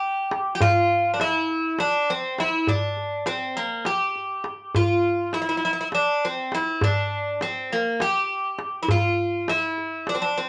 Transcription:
Already playing: G4
0.31 darbuka tek
0.55 G4
0.60 F4, darbuka dum
1.14 D4
1.20 E4, darbuka tek
1.50 darbuka ka
1.79 D4, darbuka tek
2.10 C4
2.39 E4, darbuka tek
2.67 D4, darbuka dum
2.97 darbuka ka
3.26 C4, darbuka tek
3.55 A#3, darbuka ka
3.85 G4, darbuka tek
4.16 darbuka ka
4.44 darbuka tek
4.75 F4, darbuka dum
5.33 E4, darbuka tek
5.42 E4
5.49 E4
5.57 E4
5.63 E4, darbuka ka
5.73 E4
5.81 E4
5.92 D4, darbuka tek
6.25 C4
6.52 E4, darbuka tek
6.81 D4, darbuka dum
7.41 C4, darbuka tek
7.70 A#3, darbuka ka
8.00 G4, darbuka tek
8.59 darbuka tek
8.83 E4
8.88 F4, darbuka dum
9.48 E4, darbuka tek
9.78 darbuka ka
10.07 D4, darbuka tek
10.15 C4
10.22 D4
10.37 C4

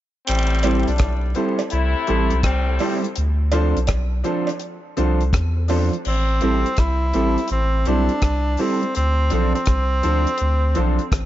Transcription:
0.27 A1 A2 G3 C4, closed hi-hat, vibraslap
0.63 G3 C4 E4 G4 A4 C5, closed hi-hat, cowbell
0.87 B1 A2 G3 D4, closed hi-hat
0.98 kick, cross-stick, closed hi-hat, cowbell
1.35 G3 C4 E4 G4 A4 C5, closed hi-hat
1.59 closed hi-hat, cowbell
1.70 C2 C3 A3 E4, closed hi-hat
2.07 A1 G3 C4 E4 G4 A4 C5, closed hi-hat
2.30 B1, closed hi-hat
2.43 C2 A2 G3 C4, kick, cross-stick, closed hi-hat
2.67 A4 C5
2.79 G3 C4 E4 G4 A4 C5, open hi-hat, cowbell
3.04 muted clean electric guitar stroke, closed hi-hat
3.16 D2, closed hi-hat
3.52 F3 C4 D4 F4 A4 C5, closed hi-hat, cowbell
3.77 B1, closed hi-hat
3.87 kick, cross-stick, closed hi-hat, cowbell
4.24 F3 C4 D4 F4 A4 C5, closed hi-hat
4.47 closed hi-hat, cowbell
4.60 closed hi-hat
4.97 C2 F3 C4 D4 F4 A4 C5, closed hi-hat
5.21 closed hi-hat
5.33 E2, kick, cross-stick, closed hi-hat
5.56 A4 C5
5.68 F3 C4 D4 F4 A4 C5, open hi-hat, cowbell
5.93 muted clean electric guitar stroke, closed hi-hat
6.05 A1 C4, crash
6.41 A1 G3 C4 E4 G4 A4 C5, closed hi-hat
6.66 closed hi-hat
6.77 C2 E4, kick, cross-stick, closed hi-hat
7.13 A1 G3 C4 E4 G4 A4 C5, closed hi-hat
7.38 closed hi-hat
7.48 A1, closed hi-hat
7.52 C4
7.85 B1 G3 C4 D4 E4 G4 A4 C5, closed hi-hat
8.09 closed hi-hat
8.22 C2, kick, cross-stick, closed hi-hat
8.57 G3 C4 E4 G4 A4 C5, open hi-hat
8.61 C4
8.82 A4 C5, muted clean electric guitar stroke, closed hi-hat
8.95 D2 C4, closed hi-hat
9.30 B1 F3 C4 D4 F4 A4 C5, closed hi-hat
9.55 C4, closed hi-hat
9.66 C2, kick, cross-stick, closed hi-hat
10.02 D2 F3 C4 D4 F4 A4 C5, closed hi-hat
10.27 closed hi-hat
10.38 D2, closed hi-hat
10.75 B1 F3 C4 D4 F4 A4 C5, closed hi-hat
10.99 closed hi-hat
11.12 A1, kick, cross-stick, closed hi-hat

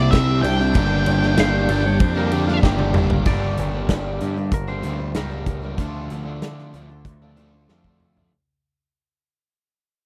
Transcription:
Already playing: C2 C3 G3 A#3 C4 D4 E4 G4 D5
0.00 G3 C4
0.11 C2 C3 G3 C4 D4 E4 G4 E5, kick, snare, ride
0.42 C2 C3 G3 C4 D4 E4 G4 G5, ride
0.58 G3 C4 D4 E4 G4, muted overdriven electric guitar stroke, snare
0.74 G1 G2 D3 G3 A#3 D4 G4 D5, kick, ride
1.06 G1 G3 A#3 D4 G4, ride
1.22 G3 A#3 D4, snare
1.37 G1 G2 D3 G3 A#3 D4 G4 F5, snare, ride
1.69 G1 D3 G3 A#3 D4 G4 D5, ride
1.86 C#5, muted overdriven electric guitar stroke
2.00 F2 C5, kick, ride
2.17 G3 A#3 D4 G4 A#4
2.32 D3 G3 A#3 D4 G4, ride
2.46 G3 A#3 D4 F4, muted overdriven electric guitar stroke, snare
2.63 G1 G2 D3 G3 A#3 D4 G4, kick, snare
2.79 high tom
2.93 G1 D3 G3 A#3 D4, mid tom
2.98 G4
3.10 G3 A#3 D4 G4, muted overdriven electric guitar stroke, floor tom
3.25 G1 G2 D3 G3 A#3 D4 G4 D5, kick, crash
3.57 G1 G3 A#3 D4 G4, closed hi-hat
3.73 G3 A#3 D4
3.89 G1 G2 D3 G3 A#3 D4 G4, kick, snare, closed hi-hat
4.20 G2 D3 G3 A#3 D4 G4, closed hi-hat
4.37 G3 A#3 D4 G4, muted overdriven electric guitar stroke
4.51 G1 A#4, kick, closed hi-hat
4.68 G3 A#3 D4 G4 C5
4.83 D2 G2 D3 G3 A#3 D4 G4, closed hi-hat
4.99 muted overdriven electric guitar stroke
5.14 C#2 G2 D3 G3 A#3 D4 G4 A#4, snare, closed hi-hat
5.30 G3 A#3 D4 G4
5.46 kick, closed hi-hat
5.62 G3 A#3 D4 G4
5.78 D2 D3 F3 A3 D4 F4 A4, kick, closed hi-hat
6.10 D2 F3 D4 F4 A4, closed hi-hat
6.25 F3 A3 D4
6.42 D3 F3 A3 D4 F4 A4, snare, closed hi-hat
6.58 snare
6.73 D2 D3 F3 A3 D4 F4 A4, closed hi-hat
6.89 D4 F4 A4, muted overdriven electric guitar stroke
7.05 D2, kick, closed hi-hat
7.21 F3 A3 D4 F4 A4
7.37 D3 F3 A3 D4 F4 A4, closed hi-hat
7.55 muted overdriven electric guitar stroke
7.69 F2 D3 F3 A3 D4 F4 A4, snare
7.84 A3 F4 A4, kick
7.88 F3 D4
8.00 mid tom
8.17 F3 A3 D4 F4 A4, floor tom

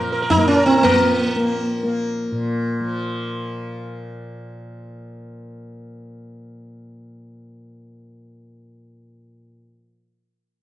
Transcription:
Already playing: A#2 F3 A#3 A#4
0.12 A#4
0.22 A#4
0.30 D#4, tabla tin, tabla ge
0.37 A#3 A#4
0.48 C#4, tabla te
0.56 A#4
0.66 C4, tabla te
0.77 C4
0.83 F3 A#3, tabla na, tabla ge
1.36 A#3
1.83 A#3
2.32 A#2
2.80 F3

